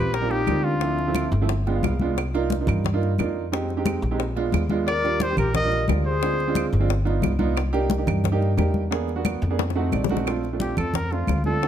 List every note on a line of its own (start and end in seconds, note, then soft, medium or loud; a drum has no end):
0.00 0.44 A#1 medium
0.00 0.12 G3 medium
0.00 0.12 A#3 medium
0.00 0.12 C4 medium
0.00 0.12 F4 medium
0.00 0.12 G4 medium
0.00 0.16 B4 medium
0.12 0.30 G4 medium
0.12 0.32 A#4 medium
0.12 high bongo medium
0.12 high conga soft
0.21 0.40 G3 medium
0.21 0.40 A#3 medium
0.21 0.40 C4 medium
0.21 0.40 F4 medium
0.29 0.64 D#4 medium
0.29 0.66 G4 medium
0.29 high bongo soft
0.29 high conga soft
0.47 1.27 D2 medium
0.47 0.71 G3 medium
0.47 0.72 A#3 medium
0.47 0.72 C4 medium
0.47 0.72 F4 medium
0.47 high bongo soft
0.47 low bongo medium
0.47 high conga medium
0.47 claves medium
0.63 1.31 D4 medium
0.63 1.32 F4 medium
0.81 1.00 F3 medium
0.81 1.00 A3 medium
0.81 1.00 C4 medium
0.81 1.00 E4 medium
0.81 high bongo medium
0.81 high conga soft
0.98 high bongo soft
0.98 high conga soft
1.08 1.31 F3 medium
1.08 1.31 A3 medium
1.08 1.31 C4 medium
1.08 1.31 E4 medium
1.15 high bongo medium
1.15 high conga loud
1.15 claves medium
1.32 1.79 G1 loud
1.32 high bongo soft
1.32 high conga soft
1.41 1.50 F3 medium
1.41 1.50 A3 medium
1.41 1.50 C4 medium
1.41 1.50 E4 loud
1.49 high bongo medium
1.49 high conga soft
1.67 1.90 G#3 medium
1.67 1.90 B3 medium
1.67 1.90 D4 medium
1.67 1.90 F4 medium
1.67 1.74 G5 medium
1.67 high bongo soft
1.67 high conga soft
1.76 1.83 F5 medium
1.83 2.62 C2 medium
1.83 2.15 F5 medium
1.83 high bongo soft
1.83 low bongo medium
1.83 high conga medium
1.83 claves medium
2.00 2.18 G#3 medium
2.00 2.18 B3 medium
2.00 2.18 D4 medium
2.00 2.18 F4 loud
2.00 high conga medium
2.17 high bongo medium
2.17 high conga soft
2.17 claves medium
2.34 2.52 A#3 loud
2.34 2.52 D4 medium
2.34 2.52 D#4 medium
2.34 2.52 F4 loud
2.34 high bongo soft
2.34 high conga soft
2.50 high bongo medium
2.50 high conga loud
2.60 2.84 A#3 medium
2.60 2.84 D4 medium
2.60 2.84 D#4 medium
2.60 2.84 F4 medium
2.67 3.15 G2 loud
2.67 high bongo soft
2.67 high conga soft
2.67 low conga medium
2.67 claves medium
2.84 high bongo medium
2.84 high conga soft
2.84 low conga medium
2.93 3.11 A#3 medium
2.93 3.11 D4 medium
2.93 3.11 D#4 medium
2.93 3.11 F4 loud
3.02 high bongo soft
3.02 high conga soft
3.18 3.97 F2 medium
3.18 3.42 A#3 medium
3.18 3.43 D4 medium
3.18 3.43 D#4 medium
3.18 3.43 F4 medium
3.18 high bongo soft
3.18 low bongo medium
3.18 high conga medium
3.18 claves medium
3.52 3.70 G#3 medium
3.52 3.70 C4 medium
3.52 3.70 D#4 medium
3.52 3.70 G4 medium
3.52 high bongo medium
3.52 high conga soft
3.69 high bongo soft
3.69 high conga soft
3.77 4.01 G#3 medium
3.77 4.01 C4 medium
3.77 4.01 D#4 medium
3.77 4.01 G4 loud
3.86 high bongo medium
3.86 high conga loud
3.86 claves medium
4.02 4.50 A#1 loud
4.02 high bongo soft
4.02 high conga soft
4.11 4.20 G#3 medium
4.11 4.20 C4 medium
4.11 4.20 D#4 medium
4.11 4.20 G4 medium
4.20 high bongo medium
4.20 high conga soft
4.36 4.60 G#3 medium
4.36 4.60 B3 medium
4.36 4.60 D4 medium
4.36 4.60 F4 loud
4.36 high bongo soft
4.36 high conga soft
4.52 5.32 D#2 medium
4.52 high bongo soft
4.52 low bongo medium
4.52 high conga medium
4.52 claves medium
4.70 4.87 G#3 loud
4.70 4.87 B3 medium
4.70 4.87 D4 medium
4.70 4.87 F4 loud
4.70 high conga medium
4.87 5.22 A#4 medium
4.87 5.24 D5 loud
4.87 high bongo medium
4.87 high conga soft
4.87 claves medium
5.04 5.22 G3 medium
5.04 5.22 A#3 medium
5.04 5.22 D4 medium
5.04 5.22 F4 medium
5.04 high bongo soft
5.04 high conga soft
5.20 5.37 G4 medium
5.20 5.38 C5 medium
5.20 high bongo medium
5.20 high conga loud
5.30 5.53 G3 medium
5.30 5.53 A#3 medium
5.30 5.53 D4 medium
5.30 5.53 G4 medium
5.37 5.85 A#1 loud
5.37 5.54 G4 medium
5.37 5.54 A#4 medium
5.37 high bongo soft
5.37 high conga soft
5.37 low conga medium
5.37 claves medium
5.54 5.86 A#4 medium
5.54 5.87 D#5 loud
5.54 high bongo medium
5.54 high conga soft
5.54 low conga medium
5.63 5.81 G3 medium
5.63 5.81 A#3 medium
5.63 5.81 D4 medium
5.63 5.81 F4 medium
5.71 high bongo soft
5.71 high conga soft
5.88 6.67 D2 medium
5.88 6.12 G3 medium
5.88 6.12 A#3 medium
5.88 6.12 D4 medium
5.88 6.12 F4 medium
5.88 high bongo soft
5.88 low bongo medium
5.88 high conga medium
5.88 claves medium
6.05 6.69 G#4 medium
6.05 6.69 C5 medium
6.21 6.40 G#3 medium
6.21 6.40 C4 medium
6.21 6.40 D4 medium
6.21 6.40 F4 medium
6.21 high bongo medium
6.21 high conga soft
6.39 high bongo soft
6.39 high conga soft
6.47 6.71 G#3 medium
6.47 6.71 C4 medium
6.47 6.71 D4 medium
6.47 6.71 F4 medium
6.55 high bongo medium
6.55 high conga loud
6.55 claves medium
6.72 7.20 G1 loud
6.72 high bongo soft
6.72 high conga soft
6.80 6.89 G#3 medium
6.80 6.89 C4 medium
6.80 6.89 D4 medium
6.80 6.89 F4 loud
6.89 high bongo medium
6.89 high conga soft
7.05 7.29 B3 medium
7.05 7.29 D4 medium
7.05 7.30 D#4 medium
7.05 7.30 F4 loud
7.05 high bongo soft
7.05 high conga soft
7.22 8.02 C2 medium
7.22 high bongo soft
7.22 low bongo medium
7.22 high conga medium
7.22 claves medium
7.39 7.56 B3 loud
7.39 7.56 D4 medium
7.39 7.56 D#4 medium
7.39 7.56 F4 loud
7.39 high conga medium
7.56 high bongo medium
7.56 high conga soft
7.56 claves medium
7.73 7.91 A#3 loud
7.73 7.91 D4 loud
7.73 7.91 D#4 medium
7.73 7.91 G4 loud
7.73 high bongo soft
7.73 high conga soft
7.90 high bongo medium
7.90 high conga loud
7.98 8.22 A#3 medium
7.98 8.22 D4 medium
7.98 8.22 D#4 medium
7.98 8.22 G4 medium
8.07 8.55 G2 loud
8.07 high bongo soft
8.07 high conga soft
8.07 low conga medium
8.07 claves medium
8.24 high bongo medium
8.24 high conga soft
8.24 low conga medium
8.32 8.50 A#3 medium
8.32 8.50 D4 medium
8.32 8.50 D#4 medium
8.32 8.50 G4 loud
8.41 high bongo soft
8.41 high conga soft
8.57 9.37 E2 medium
8.57 8.81 A#3 medium
8.57 8.81 D4 medium
8.57 8.81 D#4 medium
8.57 8.81 G4 loud
8.57 high bongo soft
8.57 low bongo medium
8.57 high conga medium
8.57 claves medium
8.74 high conga medium
8.91 9.09 A#3 medium
8.91 9.09 B3 medium
8.91 9.09 D4 medium
8.91 9.09 G#4 medium
8.91 high bongo medium
8.91 high conga soft
9.08 high bongo soft
9.08 high conga soft
9.16 9.40 A#3 medium
9.16 9.40 B3 medium
9.16 9.40 D4 medium
9.16 9.40 F#4 medium
9.25 high bongo medium
9.25 high conga medium
9.25 claves medium
9.42 9.89 F2 loud
9.42 high bongo soft
9.42 high conga soft
9.50 9.59 A#3 medium
9.50 9.59 B3 medium
9.50 9.59 D4 medium
9.50 9.59 G#4 medium
9.59 high bongo loud
9.59 high conga soft
9.70 high bongo medium
9.76 10.00 A3 medium
9.76 10.00 C4 medium
9.76 10.00 D#4 medium
9.76 10.00 F#4 medium
9.76 9.92 F#5 medium
9.76 high conga soft
9.92 10.72 A#1 medium
9.92 10.25 D5 medium
9.92 low bongo medium
9.92 high conga medium
9.92 claves medium
10.04 low bongo loud
10.09 10.25 A3 medium
10.09 10.25 C4 medium
10.09 10.27 D#4 medium
10.09 10.27 F#4 loud
10.09 high conga medium
10.17 low bongo medium
10.26 10.44 A3 medium
10.26 10.44 C4 medium
10.26 10.45 D4 medium
10.26 10.45 F4 medium
10.26 high bongo medium
10.26 high conga soft
10.26 claves medium
10.44 high bongo soft
10.44 high conga soft
10.53 10.94 A3 medium
10.53 10.94 C4 medium
10.53 10.94 D4 medium
10.53 10.94 F4 medium
10.60 10.77 G4 medium
10.60 high bongo medium
10.60 high conga loud
10.77 11.25 F2 medium
10.77 10.97 A4 medium
10.77 high bongo soft
10.77 high conga soft
10.77 low conga medium
10.77 claves medium
10.94 11.14 A#4 medium
10.94 high bongo medium
10.94 high conga soft
10.94 low conga medium
11.11 11.36 A3 medium
11.11 11.36 C4 medium
11.11 11.36 D4 medium
11.11 11.45 F4 medium
11.11 11.36 F4 medium
11.11 high bongo soft
11.11 high conga soft
11.27 11.68 D2 medium
11.27 high bongo soft
11.27 low bongo medium
11.27 high conga medium
11.27 claves medium
11.44 11.57 A3 medium
11.44 11.58 C4 medium
11.44 11.58 D4 medium
11.44 11.57 F4 medium
11.44 11.68 A4 medium
11.44 high conga medium
11.62 11.68 A3 medium
11.62 11.68 C4 medium
11.62 11.68 D#4 medium
11.62 11.68 F#4 medium
11.62 high bongo medium
11.62 high conga soft